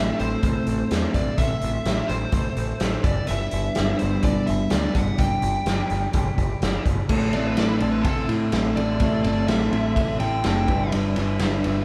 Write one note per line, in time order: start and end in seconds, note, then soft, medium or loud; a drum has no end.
0.00 0.10 A1 medium
0.00 3.03 A3 medium
0.00 3.04 C4 medium
0.00 3.04 E4 medium
0.00 3.03 A4 medium
0.00 3.06 A4 medium
0.00 0.22 E5 medium
0.00 3.02 E5 medium
0.00 3.03 C6 medium
0.00 4.93 E6 medium
0.19 0.35 A1 medium
0.19 1.17 C5 medium
0.19 closed hi-hat medium
0.43 0.58 A1 medium
0.43 kick loud
0.43 closed hi-hat medium
0.67 0.82 A1 medium
0.67 closed hi-hat medium
0.91 1.06 E2 medium
0.91 snare loud
0.91 closed hi-hat medium
1.14 1.29 A1 medium
1.14 1.38 D5 medium
1.14 kick medium
1.14 closed hi-hat medium
1.38 1.53 A1 medium
1.38 2.12 E5 medium
1.38 kick loud
1.38 closed hi-hat medium
1.61 1.77 A1 medium
1.61 closed hi-hat medium
1.85 2.00 A1 medium
1.85 snare loud
1.85 closed hi-hat medium
2.08 2.24 A1 medium
2.08 3.07 C5 medium
2.08 closed hi-hat medium
2.32 2.47 A1 medium
2.32 kick loud
2.32 closed hi-hat medium
2.57 2.72 A1 medium
2.57 closed hi-hat medium
2.80 2.96 A1 medium
2.80 snare loud
2.80 closed hi-hat medium
3.03 3.19 G1 medium
3.03 6.86 G3 medium
3.03 6.86 B3 medium
3.03 6.87 D4 medium
3.03 6.87 E4 medium
3.03 7.06 G4 medium
3.03 6.88 B4 medium
3.03 3.28 D5 medium
3.03 7.06 D5 medium
3.03 7.06 B5 medium
3.03 kick loud
3.03 closed hi-hat medium
3.27 3.44 G1 medium
3.27 3.96 E5 loud
3.27 closed hi-hat medium
3.51 3.67 G1 medium
3.51 closed hi-hat medium
3.75 3.92 G1 medium
3.75 snare loud
3.75 closed hi-hat medium
3.99 4.16 G1 medium
3.99 4.23 C5 medium
3.99 closed hi-hat medium
4.23 4.39 G1 medium
4.23 4.49 D5 medium
4.23 kick loud
4.23 closed hi-hat medium
4.46 4.63 G1 medium
4.46 4.69 E5 medium
4.46 closed hi-hat medium
4.70 4.86 D2 medium
4.70 4.96 D5 medium
4.70 snare loud
4.70 closed hi-hat medium
4.95 5.10 G1 medium
4.95 5.20 F#5 medium
4.95 7.08 D6 medium
4.95 kick medium
4.95 closed hi-hat medium
5.18 5.34 G1 medium
5.18 6.83 G5 loud
5.18 kick loud
5.18 closed hi-hat medium
5.42 5.57 G1 medium
5.42 closed hi-hat medium
5.66 5.81 G1 medium
5.66 snare loud
5.66 closed hi-hat medium
5.90 6.05 G1 medium
5.90 closed hi-hat medium
6.13 6.29 G1 medium
6.13 kick loud
6.13 closed hi-hat medium
6.38 6.53 G1 medium
6.38 kick medium
6.38 closed hi-hat medium
6.62 6.77 G1 medium
6.62 snare loud
6.62 closed hi-hat medium
6.86 7.01 G1 medium
6.86 kick medium
6.86 closed hi-hat medium
7.09 7.30 A1 medium
7.09 7.35 A3 medium
7.09 7.34 C4 medium
7.09 7.33 E4 medium
7.09 7.33 A4 medium
7.09 kick loud
7.09 crash loud
7.14 10.67 A4 medium
7.14 10.67 E5 medium
7.14 10.67 C6 medium
7.14 11.85 E6 medium
7.33 7.54 A1 medium
7.33 7.57 A3 medium
7.33 7.58 C4 medium
7.33 7.59 E4 medium
7.33 7.59 A4 medium
7.33 7.46 D5 medium
7.33 ride medium
7.46 7.59 B4 medium
7.57 7.78 A1 medium
7.57 8.06 A3 medium
7.57 7.82 C4 medium
7.57 7.81 E4 medium
7.57 7.80 A4 medium
7.57 7.67 D5 medium
7.57 snare medium
7.57 ride medium
7.67 7.78 B4 medium
7.78 8.02 A1 medium
7.78 8.30 E4 medium
7.78 8.28 A4 medium
7.78 7.91 D5 medium
7.78 ride medium
7.83 8.30 C4 medium
7.92 8.04 B4 medium
8.02 8.25 A1 medium
8.02 9.00 A3 medium
8.02 8.27 A4 medium
8.02 kick loud
8.02 ride medium
8.29 8.50 A2 medium
8.29 8.52 C4 medium
8.29 8.54 E4 medium
8.29 8.54 A4 medium
8.29 ride medium
8.52 8.73 A1 medium
8.52 9.00 A3 medium
8.52 8.78 C4 medium
8.52 8.78 E4 medium
8.52 8.76 A4 medium
8.52 snare loud
8.52 ride medium
8.76 8.97 A1 medium
8.76 9.01 C4 soft
8.76 9.02 E4 medium
8.76 9.02 A4 medium
8.76 9.22 D5 medium
8.76 ride medium
9.00 9.22 A1 medium
9.00 9.27 A3 medium
9.00 9.26 C4 medium
9.00 9.26 E4 medium
9.00 9.24 A4 medium
9.00 kick loud
9.00 ride medium
9.24 9.45 G1 medium
9.24 9.49 C4 medium
9.24 9.50 E4 medium
9.24 9.50 A4 medium
9.24 9.48 D5 medium
9.24 ride medium
9.28 9.48 A3 medium
9.47 9.69 A1 medium
9.47 9.97 A3 medium
9.47 9.75 C4 medium
9.47 9.74 E4 medium
9.47 10.18 E5 medium
9.47 snare loud
9.47 ride medium
9.51 9.72 A4 medium
9.71 9.92 A1 medium
9.71 10.42 C4 medium
9.71 10.22 E4 medium
9.71 10.19 A4 medium
9.71 ride medium
9.76 10.22 C4 medium
9.96 10.17 A1 medium
9.96 10.68 A3 medium
9.96 kick loud
9.96 ride medium
10.20 10.41 A1 medium
10.20 10.45 C4 medium
10.20 10.46 E4 medium
10.20 10.46 A4 medium
10.20 10.44 G5 medium
10.20 ride medium
10.44 10.65 F#1 medium
10.44 10.67 A3 medium
10.44 10.68 C4 medium
10.44 10.69 E4 medium
10.44 10.68 A4 medium
10.44 10.91 G5 medium
10.44 snare loud
10.44 ride medium
10.67 10.89 G1 medium
10.67 10.92 G3 medium
10.67 10.93 D4 medium
10.67 10.93 E4 medium
10.67 11.85 G4 medium
10.67 10.94 B4 medium
10.67 11.85 D5 medium
10.67 11.85 B5 medium
10.67 kick loud
10.67 ride medium
10.92 11.14 G1 medium
10.92 11.19 G3 medium
10.92 11.18 D4 loud
10.92 11.17 E4 medium
10.92 11.16 B4 loud
10.92 ride medium
11.16 11.37 G1 medium
11.16 11.40 G3 medium
11.16 11.42 D4 medium
11.16 11.42 E4 medium
11.16 11.43 B4 medium
11.16 ride medium
11.39 11.61 G1 medium
11.39 11.85 G3 medium
11.39 11.66 D4 medium
11.39 11.65 E4 medium
11.39 snare loud
11.39 ride medium
11.43 11.64 B4 medium
11.64 11.85 G1 medium
11.64 11.85 D4 medium
11.64 11.85 E4 medium
11.64 11.85 B4 medium
11.64 ride medium